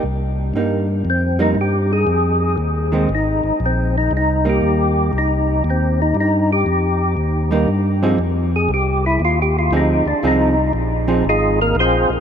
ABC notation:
X:1
M:4/4
L:1/8
Q:"Swing" 1/4=118
K:Cm
V:1 name="Tonewheel organ"
z4 C E G A- | A2 z2 E2 C E | E G3 E2 C E | E G3 z4 |
z A G =E (3F G F _E D | E2 z2 [A,EFA] [B,B] [CFAc] z |]
V:2 name="Hollow-body jazz guitar"
z2 [G,B,E] z2 [G,B,E] z2 | z3 [E,A,C] z4 | z [G,B,E]3 z4 | z4 z [G,B,E] z [F,CEA] |
z6 [F,CEA] z | [F,CEA] z2 [F,CEA] z4 |]
V:3 name="Tonewheel organ" clef=bass
C,,2 G,,2 F,,2 G,,2 | F,,2 E,,2 A,,, A,,, B,,,2 | C,,2 E,,2 C,,2 E,,2 | G,,2 F,,2 E,,2 G,,2 |
F,,2 C,,2 E,,2 D,, D,, | C,,2 B,,,2 A,,,2 B,,, B,,, |]